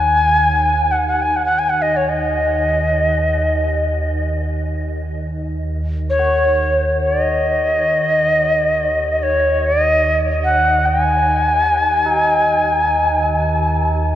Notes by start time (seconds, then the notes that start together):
Already playing: D#2 C#4 G#5
0.91 F#5
1.08 F#5
1.22 G#5
1.36 F#5
1.46 F#5
1.59 G#5
1.69 F#5
1.82 D#5
1.96 C#5
2.09 D#5
5.39 D#2
6.10 C#5
6.20 F#4
7.07 D#5
9.12 D#5
9.19 C#5 D#5
9.66 D#5
10.44 F#5
10.86 G#5
12.06 D#4